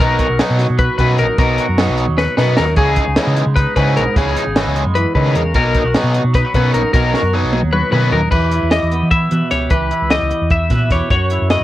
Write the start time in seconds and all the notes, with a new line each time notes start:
0.00 B1 B2 F#3 B3 D#4 F#4 A#4
0.19 F#4, kick, closed hi-hat
0.30 B1
0.39 B2 F#3 B3 D#4, snare, closed hi-hat
0.50 B2
0.58 F#3, snare, closed hi-hat
0.70 B2
0.78 F#4 B4, kick, closed hi-hat
0.98 F#2 B2 F#3 B3 D#4 B4, kick, closed hi-hat
1.18 A#1 D#4 A#4, closed hi-hat
1.38 B1 B2 F#3 B3 D#4 A#4, kick, closed hi-hat
1.58 F#4, closed hi-hat
1.69 F#2
1.78 B2 F#3 B3 D#4, snare, closed hi-hat
1.89 B1
1.97 F#3, closed hi-hat
2.08 D#2
2.17 F#4 B4, snare
2.37 F#2 B2 F#3 B3 D#4 B4, snare
2.57 D#2 D#4 A#4, snare
2.76 C#2 C#3 E3 G#3 C#4 G#4, kick, closed hi-hat
2.96 D#4, kick, closed hi-hat
3.07 C#2
3.16 C#3 E3 G#3 B3 C#4, snare, closed hi-hat
3.27 C#3
3.37 G#3, closed hi-hat
3.47 C#3
3.56 D#4 B4, kick, snare, closed hi-hat
3.76 G#2 C#3 E3 G#3 C#4 B4, kick, closed hi-hat
3.97 B1 B3 A#4, closed hi-hat
4.16 C#2 C#3 E3 G#3 C#4 G#4, kick, closed hi-hat
4.37 D#4, closed hi-hat
4.47 G#1
4.56 C#3 E3 G#3 B3 C#4, snare, closed hi-hat
4.66 C#2
4.76 G#3, closed hi-hat
4.86 F#2
4.95 E3 B4, closed hi-hat
5.15 C#3 D#3 E3 G#3 C#4 B4, kick, snare, closed hi-hat
5.35 E2 C#3 A#4, closed hi-hat
5.54 B1 B2 F#3 B3 D#4 A#4, kick, closed hi-hat
5.74 D#4, kick, closed hi-hat
5.84 B1 F#4
5.94 B2 F#3 B3 D#4, snare, closed hi-hat
6.03 B2
6.14 F#3, closed hi-hat
6.24 B2
6.34 D#4 B4, kick, snare, closed hi-hat
6.44 F#4
6.54 F#2 B2 F#3 B3 D#4 B4, kick, closed hi-hat
6.74 A#1 D#4 A#4, closed hi-hat
6.92 B1 B2 F#3 B3 D#4 A#4, kick, closed hi-hat
7.14 F#4, snare
7.22 F#2
7.33 B2 F#3 B3 D#4
7.42 B1
7.53 F#3, high tom
7.63 D#2
7.73 F#4 B4, mid tom
7.91 F#2 B2 F#3 B3 D#4 B4, mid tom
8.12 D#2 D#4 A#4, floor tom
8.31 E2 E3 G4 B4, kick, crash
8.52 E4, closed hi-hat
8.63 E2
8.71 G4 D#5, snare, closed hi-hat
8.83 E2
8.92 B3, closed hi-hat
9.03 E3
9.11 E4 E5, kick, closed hi-hat
9.31 B2 E3 B4, closed hi-hat
9.51 C#2 G4 C#5, snare, closed hi-hat
9.70 C#2 E3 G4 B4, kick, closed hi-hat
9.91 E4, closed hi-hat
10.02 C#2
10.10 G4 D#5, snare, closed hi-hat
10.22 C#2
10.30 B3, closed hi-hat
10.42 E2
10.50 E4 E5, kick, closed hi-hat
10.70 A#2 B2 B4, kick, snare, closed hi-hat
10.90 E2 G4 C#5, kick, snare, closed hi-hat
11.10 F#2 F#4 C#5, kick, closed hi-hat
11.30 E4, closed hi-hat
11.42 F#2
11.50 F#4 D#5, snare, closed hi-hat
11.61 F#2